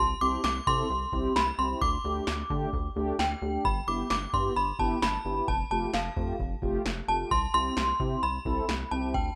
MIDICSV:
0, 0, Header, 1, 5, 480
1, 0, Start_track
1, 0, Tempo, 458015
1, 1903, Time_signature, 4, 2, 24, 8
1, 9801, End_track
2, 0, Start_track
2, 0, Title_t, "Synth bell"
2, 0, Program_c, 0, 98
2, 0, Note_on_c, 0, 84, 106
2, 206, Note_off_c, 0, 84, 0
2, 223, Note_on_c, 0, 86, 105
2, 451, Note_off_c, 0, 86, 0
2, 464, Note_on_c, 0, 86, 104
2, 687, Note_off_c, 0, 86, 0
2, 704, Note_on_c, 0, 84, 105
2, 1424, Note_on_c, 0, 83, 99
2, 1445, Note_off_c, 0, 84, 0
2, 1647, Note_off_c, 0, 83, 0
2, 1663, Note_on_c, 0, 84, 91
2, 1886, Note_off_c, 0, 84, 0
2, 1902, Note_on_c, 0, 86, 103
2, 3301, Note_off_c, 0, 86, 0
2, 3345, Note_on_c, 0, 79, 91
2, 3824, Note_on_c, 0, 83, 99
2, 3839, Note_off_c, 0, 79, 0
2, 3932, Note_off_c, 0, 83, 0
2, 4064, Note_on_c, 0, 86, 92
2, 4171, Note_off_c, 0, 86, 0
2, 4304, Note_on_c, 0, 86, 96
2, 4527, Note_off_c, 0, 86, 0
2, 4545, Note_on_c, 0, 84, 89
2, 4783, Note_on_c, 0, 83, 92
2, 4791, Note_off_c, 0, 84, 0
2, 5024, Note_on_c, 0, 81, 81
2, 5030, Note_off_c, 0, 83, 0
2, 5264, Note_on_c, 0, 83, 92
2, 5271, Note_off_c, 0, 81, 0
2, 5710, Note_off_c, 0, 83, 0
2, 5744, Note_on_c, 0, 81, 93
2, 5967, Note_off_c, 0, 81, 0
2, 5984, Note_on_c, 0, 81, 87
2, 6225, Note_on_c, 0, 77, 75
2, 6231, Note_off_c, 0, 81, 0
2, 6670, Note_off_c, 0, 77, 0
2, 7425, Note_on_c, 0, 81, 91
2, 7647, Note_off_c, 0, 81, 0
2, 7664, Note_on_c, 0, 84, 110
2, 7891, Note_off_c, 0, 84, 0
2, 7903, Note_on_c, 0, 84, 104
2, 8624, Note_on_c, 0, 83, 98
2, 8645, Note_off_c, 0, 84, 0
2, 9302, Note_off_c, 0, 83, 0
2, 9342, Note_on_c, 0, 81, 86
2, 9582, Note_on_c, 0, 79, 83
2, 9590, Note_off_c, 0, 81, 0
2, 9801, Note_off_c, 0, 79, 0
2, 9801, End_track
3, 0, Start_track
3, 0, Title_t, "Analog polysynth"
3, 0, Program_c, 1, 90
3, 223, Note_on_c, 1, 60, 75
3, 223, Note_on_c, 1, 64, 69
3, 223, Note_on_c, 1, 67, 84
3, 431, Note_off_c, 1, 60, 0
3, 431, Note_off_c, 1, 64, 0
3, 431, Note_off_c, 1, 67, 0
3, 704, Note_on_c, 1, 60, 74
3, 704, Note_on_c, 1, 64, 67
3, 704, Note_on_c, 1, 69, 80
3, 911, Note_off_c, 1, 60, 0
3, 911, Note_off_c, 1, 64, 0
3, 911, Note_off_c, 1, 69, 0
3, 1184, Note_on_c, 1, 60, 77
3, 1184, Note_on_c, 1, 64, 72
3, 1184, Note_on_c, 1, 67, 88
3, 1391, Note_off_c, 1, 60, 0
3, 1391, Note_off_c, 1, 64, 0
3, 1391, Note_off_c, 1, 67, 0
3, 1663, Note_on_c, 1, 64, 66
3, 1664, Note_on_c, 1, 60, 74
3, 1664, Note_on_c, 1, 67, 81
3, 1767, Note_off_c, 1, 60, 0
3, 1767, Note_off_c, 1, 64, 0
3, 1767, Note_off_c, 1, 67, 0
3, 1784, Note_on_c, 1, 60, 70
3, 1784, Note_on_c, 1, 64, 62
3, 1784, Note_on_c, 1, 67, 76
3, 1904, Note_off_c, 1, 60, 0
3, 1904, Note_off_c, 1, 64, 0
3, 1904, Note_off_c, 1, 67, 0
3, 2143, Note_on_c, 1, 57, 75
3, 2143, Note_on_c, 1, 62, 69
3, 2143, Note_on_c, 1, 67, 85
3, 2351, Note_off_c, 1, 57, 0
3, 2351, Note_off_c, 1, 62, 0
3, 2351, Note_off_c, 1, 67, 0
3, 2623, Note_on_c, 1, 57, 87
3, 2623, Note_on_c, 1, 62, 80
3, 2623, Note_on_c, 1, 67, 96
3, 2831, Note_off_c, 1, 57, 0
3, 2831, Note_off_c, 1, 62, 0
3, 2831, Note_off_c, 1, 67, 0
3, 3102, Note_on_c, 1, 62, 83
3, 3102, Note_on_c, 1, 67, 105
3, 3103, Note_on_c, 1, 57, 93
3, 3310, Note_off_c, 1, 57, 0
3, 3310, Note_off_c, 1, 62, 0
3, 3310, Note_off_c, 1, 67, 0
3, 3583, Note_on_c, 1, 57, 74
3, 3583, Note_on_c, 1, 62, 65
3, 3584, Note_on_c, 1, 67, 82
3, 3687, Note_off_c, 1, 57, 0
3, 3687, Note_off_c, 1, 62, 0
3, 3687, Note_off_c, 1, 67, 0
3, 3703, Note_on_c, 1, 57, 68
3, 3703, Note_on_c, 1, 62, 62
3, 3703, Note_on_c, 1, 67, 76
3, 3823, Note_off_c, 1, 57, 0
3, 3823, Note_off_c, 1, 62, 0
3, 3823, Note_off_c, 1, 67, 0
3, 4063, Note_on_c, 1, 59, 75
3, 4063, Note_on_c, 1, 64, 68
3, 4063, Note_on_c, 1, 67, 83
3, 4271, Note_off_c, 1, 59, 0
3, 4271, Note_off_c, 1, 64, 0
3, 4271, Note_off_c, 1, 67, 0
3, 4543, Note_on_c, 1, 59, 71
3, 4543, Note_on_c, 1, 64, 67
3, 4543, Note_on_c, 1, 67, 83
3, 4750, Note_off_c, 1, 67, 0
3, 4751, Note_off_c, 1, 59, 0
3, 4751, Note_off_c, 1, 64, 0
3, 5023, Note_on_c, 1, 67, 88
3, 5024, Note_on_c, 1, 59, 77
3, 5024, Note_on_c, 1, 64, 73
3, 5231, Note_off_c, 1, 59, 0
3, 5231, Note_off_c, 1, 64, 0
3, 5231, Note_off_c, 1, 67, 0
3, 5503, Note_on_c, 1, 59, 74
3, 5503, Note_on_c, 1, 64, 67
3, 5503, Note_on_c, 1, 67, 82
3, 5607, Note_off_c, 1, 59, 0
3, 5607, Note_off_c, 1, 64, 0
3, 5607, Note_off_c, 1, 67, 0
3, 5624, Note_on_c, 1, 59, 71
3, 5624, Note_on_c, 1, 64, 63
3, 5624, Note_on_c, 1, 67, 75
3, 5743, Note_off_c, 1, 59, 0
3, 5743, Note_off_c, 1, 64, 0
3, 5743, Note_off_c, 1, 67, 0
3, 5984, Note_on_c, 1, 57, 77
3, 5984, Note_on_c, 1, 65, 71
3, 5984, Note_on_c, 1, 67, 83
3, 6191, Note_off_c, 1, 57, 0
3, 6191, Note_off_c, 1, 65, 0
3, 6191, Note_off_c, 1, 67, 0
3, 6463, Note_on_c, 1, 57, 75
3, 6463, Note_on_c, 1, 65, 68
3, 6463, Note_on_c, 1, 67, 80
3, 6671, Note_off_c, 1, 57, 0
3, 6671, Note_off_c, 1, 65, 0
3, 6671, Note_off_c, 1, 67, 0
3, 6944, Note_on_c, 1, 57, 94
3, 6944, Note_on_c, 1, 65, 86
3, 6944, Note_on_c, 1, 67, 103
3, 7151, Note_off_c, 1, 57, 0
3, 7151, Note_off_c, 1, 65, 0
3, 7151, Note_off_c, 1, 67, 0
3, 7424, Note_on_c, 1, 57, 74
3, 7424, Note_on_c, 1, 65, 66
3, 7424, Note_on_c, 1, 67, 79
3, 7527, Note_off_c, 1, 57, 0
3, 7527, Note_off_c, 1, 65, 0
3, 7527, Note_off_c, 1, 67, 0
3, 7544, Note_on_c, 1, 57, 70
3, 7544, Note_on_c, 1, 65, 63
3, 7544, Note_on_c, 1, 67, 77
3, 7663, Note_off_c, 1, 57, 0
3, 7663, Note_off_c, 1, 65, 0
3, 7663, Note_off_c, 1, 67, 0
3, 7904, Note_on_c, 1, 60, 77
3, 7904, Note_on_c, 1, 64, 69
3, 7904, Note_on_c, 1, 67, 83
3, 8111, Note_off_c, 1, 60, 0
3, 8111, Note_off_c, 1, 64, 0
3, 8111, Note_off_c, 1, 67, 0
3, 8384, Note_on_c, 1, 60, 77
3, 8384, Note_on_c, 1, 64, 68
3, 8384, Note_on_c, 1, 67, 84
3, 8591, Note_off_c, 1, 60, 0
3, 8591, Note_off_c, 1, 64, 0
3, 8591, Note_off_c, 1, 67, 0
3, 8864, Note_on_c, 1, 60, 80
3, 8864, Note_on_c, 1, 64, 75
3, 8864, Note_on_c, 1, 69, 89
3, 9071, Note_off_c, 1, 60, 0
3, 9071, Note_off_c, 1, 64, 0
3, 9071, Note_off_c, 1, 69, 0
3, 9344, Note_on_c, 1, 60, 72
3, 9344, Note_on_c, 1, 64, 67
3, 9344, Note_on_c, 1, 67, 83
3, 9447, Note_off_c, 1, 60, 0
3, 9447, Note_off_c, 1, 64, 0
3, 9447, Note_off_c, 1, 67, 0
3, 9464, Note_on_c, 1, 60, 70
3, 9464, Note_on_c, 1, 64, 61
3, 9464, Note_on_c, 1, 67, 76
3, 9584, Note_off_c, 1, 60, 0
3, 9584, Note_off_c, 1, 64, 0
3, 9584, Note_off_c, 1, 67, 0
3, 9801, End_track
4, 0, Start_track
4, 0, Title_t, "Analog synth bass"
4, 0, Program_c, 2, 38
4, 0, Note_on_c, 2, 36, 109
4, 151, Note_off_c, 2, 36, 0
4, 222, Note_on_c, 2, 36, 104
4, 391, Note_off_c, 2, 36, 0
4, 462, Note_on_c, 2, 36, 110
4, 631, Note_off_c, 2, 36, 0
4, 702, Note_on_c, 2, 48, 99
4, 870, Note_off_c, 2, 48, 0
4, 943, Note_on_c, 2, 36, 101
4, 1111, Note_off_c, 2, 36, 0
4, 1180, Note_on_c, 2, 36, 99
4, 1349, Note_off_c, 2, 36, 0
4, 1422, Note_on_c, 2, 36, 102
4, 1591, Note_off_c, 2, 36, 0
4, 1662, Note_on_c, 2, 36, 94
4, 1830, Note_off_c, 2, 36, 0
4, 1903, Note_on_c, 2, 38, 111
4, 2071, Note_off_c, 2, 38, 0
4, 2143, Note_on_c, 2, 38, 95
4, 2311, Note_off_c, 2, 38, 0
4, 2383, Note_on_c, 2, 38, 98
4, 2551, Note_off_c, 2, 38, 0
4, 2622, Note_on_c, 2, 50, 100
4, 2790, Note_off_c, 2, 50, 0
4, 2862, Note_on_c, 2, 38, 101
4, 3030, Note_off_c, 2, 38, 0
4, 3103, Note_on_c, 2, 38, 94
4, 3271, Note_off_c, 2, 38, 0
4, 3342, Note_on_c, 2, 38, 93
4, 3511, Note_off_c, 2, 38, 0
4, 3583, Note_on_c, 2, 38, 93
4, 3751, Note_off_c, 2, 38, 0
4, 3823, Note_on_c, 2, 31, 114
4, 3991, Note_off_c, 2, 31, 0
4, 4063, Note_on_c, 2, 31, 99
4, 4231, Note_off_c, 2, 31, 0
4, 4302, Note_on_c, 2, 31, 95
4, 4471, Note_off_c, 2, 31, 0
4, 4542, Note_on_c, 2, 43, 95
4, 4711, Note_off_c, 2, 43, 0
4, 4783, Note_on_c, 2, 31, 105
4, 4951, Note_off_c, 2, 31, 0
4, 5020, Note_on_c, 2, 31, 94
4, 5189, Note_off_c, 2, 31, 0
4, 5262, Note_on_c, 2, 31, 103
4, 5431, Note_off_c, 2, 31, 0
4, 5502, Note_on_c, 2, 31, 104
4, 5671, Note_off_c, 2, 31, 0
4, 5743, Note_on_c, 2, 29, 112
4, 5911, Note_off_c, 2, 29, 0
4, 5983, Note_on_c, 2, 29, 103
4, 6151, Note_off_c, 2, 29, 0
4, 6222, Note_on_c, 2, 29, 101
4, 6390, Note_off_c, 2, 29, 0
4, 6462, Note_on_c, 2, 41, 98
4, 6630, Note_off_c, 2, 41, 0
4, 6702, Note_on_c, 2, 29, 100
4, 6870, Note_off_c, 2, 29, 0
4, 6940, Note_on_c, 2, 29, 104
4, 7109, Note_off_c, 2, 29, 0
4, 7183, Note_on_c, 2, 29, 106
4, 7351, Note_off_c, 2, 29, 0
4, 7422, Note_on_c, 2, 29, 92
4, 7590, Note_off_c, 2, 29, 0
4, 7664, Note_on_c, 2, 36, 105
4, 7831, Note_off_c, 2, 36, 0
4, 7903, Note_on_c, 2, 36, 99
4, 8071, Note_off_c, 2, 36, 0
4, 8143, Note_on_c, 2, 36, 108
4, 8311, Note_off_c, 2, 36, 0
4, 8382, Note_on_c, 2, 48, 103
4, 8550, Note_off_c, 2, 48, 0
4, 8623, Note_on_c, 2, 36, 97
4, 8791, Note_off_c, 2, 36, 0
4, 8860, Note_on_c, 2, 36, 103
4, 9029, Note_off_c, 2, 36, 0
4, 9104, Note_on_c, 2, 36, 102
4, 9271, Note_off_c, 2, 36, 0
4, 9343, Note_on_c, 2, 36, 96
4, 9583, Note_on_c, 2, 38, 108
4, 9599, Note_off_c, 2, 36, 0
4, 9751, Note_off_c, 2, 38, 0
4, 9801, End_track
5, 0, Start_track
5, 0, Title_t, "Drums"
5, 459, Note_on_c, 9, 38, 102
5, 564, Note_off_c, 9, 38, 0
5, 702, Note_on_c, 9, 36, 87
5, 807, Note_off_c, 9, 36, 0
5, 1180, Note_on_c, 9, 36, 88
5, 1284, Note_off_c, 9, 36, 0
5, 1425, Note_on_c, 9, 38, 113
5, 1530, Note_off_c, 9, 38, 0
5, 1903, Note_on_c, 9, 36, 114
5, 2008, Note_off_c, 9, 36, 0
5, 2379, Note_on_c, 9, 38, 105
5, 2484, Note_off_c, 9, 38, 0
5, 2622, Note_on_c, 9, 36, 89
5, 2727, Note_off_c, 9, 36, 0
5, 2862, Note_on_c, 9, 36, 89
5, 2967, Note_off_c, 9, 36, 0
5, 3345, Note_on_c, 9, 38, 115
5, 3450, Note_off_c, 9, 38, 0
5, 3823, Note_on_c, 9, 36, 114
5, 3928, Note_off_c, 9, 36, 0
5, 4300, Note_on_c, 9, 38, 103
5, 4404, Note_off_c, 9, 38, 0
5, 4542, Note_on_c, 9, 36, 89
5, 4647, Note_off_c, 9, 36, 0
5, 5020, Note_on_c, 9, 36, 87
5, 5125, Note_off_c, 9, 36, 0
5, 5266, Note_on_c, 9, 38, 113
5, 5370, Note_off_c, 9, 38, 0
5, 5743, Note_on_c, 9, 36, 114
5, 5848, Note_off_c, 9, 36, 0
5, 6220, Note_on_c, 9, 38, 102
5, 6325, Note_off_c, 9, 38, 0
5, 6462, Note_on_c, 9, 36, 87
5, 6567, Note_off_c, 9, 36, 0
5, 6702, Note_on_c, 9, 36, 91
5, 6807, Note_off_c, 9, 36, 0
5, 6940, Note_on_c, 9, 36, 90
5, 7045, Note_off_c, 9, 36, 0
5, 7185, Note_on_c, 9, 38, 118
5, 7290, Note_off_c, 9, 38, 0
5, 7664, Note_on_c, 9, 36, 115
5, 7768, Note_off_c, 9, 36, 0
5, 8140, Note_on_c, 9, 38, 104
5, 8245, Note_off_c, 9, 38, 0
5, 8382, Note_on_c, 9, 36, 87
5, 8487, Note_off_c, 9, 36, 0
5, 8860, Note_on_c, 9, 36, 89
5, 8965, Note_off_c, 9, 36, 0
5, 9105, Note_on_c, 9, 38, 113
5, 9210, Note_off_c, 9, 38, 0
5, 9583, Note_on_c, 9, 36, 117
5, 9688, Note_off_c, 9, 36, 0
5, 9801, End_track
0, 0, End_of_file